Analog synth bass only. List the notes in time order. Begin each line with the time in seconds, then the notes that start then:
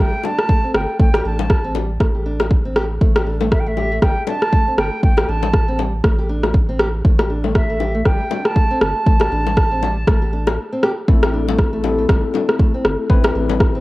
0.00 G1
0.74 G1
1.00 A1
1.25 A1
2.00 A1
3.01 A1
4.02 G1
4.78 G1
5.03 A1
5.28 A1
6.04 A1
7.05 A1
8.05 G1
8.81 G1
9.06 A1
9.32 A1
10.07 A1
11.08 A1
12.09 G1
12.85 G1
13.10 A1
13.35 A1